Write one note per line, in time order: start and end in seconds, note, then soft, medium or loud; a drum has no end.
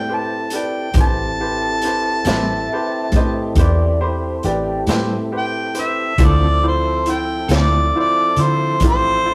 0.00 0.95 A2 medium
0.00 0.90 C4 medium
0.00 0.90 E4 medium
0.00 0.90 G4 medium
0.00 0.90 A4 medium
0.00 0.16 G5 medium
0.09 0.41 G4 soft
0.09 0.41 B4 soft
0.09 0.41 C5 soft
0.15 0.58 A5 medium
0.50 0.85 G4 soft
0.50 0.85 B4 soft
0.50 0.85 D5 soft
0.50 closed hi-hat medium
0.57 0.96 G5 medium
0.93 2.21 A1 medium
0.93 6.14 C4 medium
0.93 6.15 E4 medium
0.93 6.14 G4 medium
0.93 6.14 A4 medium
0.93 1.29 B4 soft
0.93 1.29 C5 medium
0.93 kick medium
0.93 closed hi-hat medium
0.97 1.29 G4 medium
0.97 3.56 A5 medium
1.41 1.72 G4 soft
1.41 1.72 B4 soft
1.41 1.73 C5 soft
1.82 2.16 G4 soft
1.82 2.16 B4 soft
1.82 2.16 C5 medium
1.82 closed hi-hat medium
2.25 2.66 A1 medium
2.25 2.52 A2 medium
2.25 2.52 G3 medium
2.25 2.52 C4 medium
2.25 2.52 E4 medium
2.25 2.59 G4 medium
2.25 2.59 B4 medium
2.25 2.59 C5 medium
2.25 3.12 E5 medium
2.25 snare medium
2.25 closed hi-hat medium
2.73 3.04 G4 medium
2.73 3.04 B4 medium
2.73 3.05 C5 medium
3.12 3.53 A2 medium
3.12 3.47 G4 medium
3.12 kick medium
3.12 closed hi-hat soft
3.16 3.47 B4 soft
3.16 3.48 C5 medium
3.16 3.57 D#5 medium
3.55 4.40 E2 medium
3.55 3.90 G4 medium
3.55 3.91 B4 medium
3.55 3.91 C5 medium
3.55 kick medium
3.55 closed hi-hat medium
3.59 4.01 D5 medium
4.01 4.34 G4 medium
4.01 4.34 C5 medium
4.01 4.44 C5 medium
4.01 4.34 B5 soft
4.43 4.85 A1 medium
4.43 4.77 G4 medium
4.43 5.08 G4 medium
4.43 4.78 B4 soft
4.43 4.78 D5 medium
4.43 closed hi-hat soft
4.87 6.19 A2 medium
4.87 5.15 A2 medium
4.87 5.15 G3 medium
4.87 5.15 C4 medium
4.87 5.14 E4 medium
4.87 5.21 G4 medium
4.87 5.21 B4 medium
4.87 5.21 C5 medium
4.87 snare medium
4.87 closed hi-hat medium
5.32 5.65 G4 soft
5.32 5.65 B4 soft
5.32 5.65 C5 medium
5.38 5.82 G5 medium
5.74 6.08 G4 soft
5.74 6.08 B4 soft
5.74 6.08 C5 medium
5.74 closed hi-hat medium
5.81 6.27 E5 medium
6.18 7.46 D2 medium
6.18 6.45 D3 medium
6.18 6.46 C4 medium
6.18 6.52 E4 soft
6.18 6.52 F4 soft
6.18 6.46 F4 medium
6.18 6.46 A4 medium
6.18 6.52 C5 soft
6.18 kick loud
6.18 closed hi-hat medium
6.22 9.34 F3 medium
6.22 9.34 C4 medium
6.22 9.34 A4 medium
6.22 6.65 D5 medium
6.22 9.34 E5 medium
6.63 6.96 E4 soft
6.63 6.96 F4 soft
6.63 6.96 C5 medium
6.68 7.13 C5 medium
7.06 7.39 E4 soft
7.06 7.40 F4 soft
7.06 7.40 C5 medium
7.06 closed hi-hat medium
7.12 7.52 G5 medium
7.48 7.90 D2 medium
7.48 7.77 D3 soft
7.48 7.77 C4 soft
7.48 7.84 E4 medium
7.48 7.76 F4 medium
7.48 7.83 F4 soft
7.48 7.76 A4 medium
7.48 7.84 C5 soft
7.48 snare medium
7.48 closed hi-hat medium
7.55 7.95 D5 medium
7.95 8.28 E4 medium
7.95 8.28 F4 soft
7.95 8.28 C5 medium
8.00 8.43 D5 medium
8.36 8.78 D3 medium
8.36 8.71 E4 soft
8.36 8.71 F4 soft
8.36 8.72 C5 medium
8.36 closed hi-hat medium
8.41 8.82 C5 medium
8.80 9.34 A1 medium
8.80 9.15 E4 soft
8.80 9.15 F4 soft
8.80 9.15 G4 medium
8.80 kick medium
8.80 closed hi-hat medium
8.88 9.34 C5 loud
9.26 9.34 E4 medium
9.26 9.34 F4 soft
9.26 9.34 C5 medium